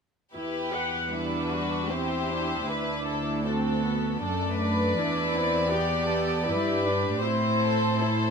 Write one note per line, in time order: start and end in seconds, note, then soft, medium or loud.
0.34 2.64 E2 soft
0.34 0.71 E4 soft
0.34 1.09 G4 soft
0.34 1.09 B4 soft
0.74 1.13 F#5 soft
1.13 1.91 G3 soft
1.13 1.91 D4 soft
1.13 1.51 E4 soft
1.13 1.89 B4 soft
1.51 1.90 F#4 soft
1.89 2.30 C4 soft
1.89 3.46 E4 soft
1.89 2.68 G4 soft
1.89 2.68 C5 soft
2.29 2.67 D4 soft
2.68 4.22 D2 soft
2.68 3.44 D4 soft
2.68 3.07 B4 soft
3.07 3.44 A4 soft
3.45 3.84 C4 soft
3.45 4.23 F#4 soft
3.45 4.21 A4 soft
3.84 4.23 B3 soft
4.22 4.97 F#2 soft
4.22 4.98 A3 soft
4.22 4.97 D4 soft
4.22 4.60 A4 soft
4.22 7.23 D5 soft
4.61 5.71 B4 soft
4.98 6.47 E2 soft
4.98 5.35 D4 soft
4.98 5.73 E4 soft
5.36 5.73 C4 soft
5.72 6.47 B3 soft
5.72 6.10 G4 soft
5.72 6.46 G4 soft
6.10 6.46 A4 soft
6.47 7.22 G2 soft
6.47 6.85 E4 soft
6.47 7.21 G4 soft
6.47 7.22 B4 soft
6.85 7.23 D4 soft
7.21 8.30 A2 soft
7.21 7.98 C4 soft
7.21 7.99 E4 soft
7.21 7.98 C5 soft
7.60 7.98 A4 soft
7.99 8.30 E4 soft
7.99 8.30 A4 soft
7.99 8.30 C5 soft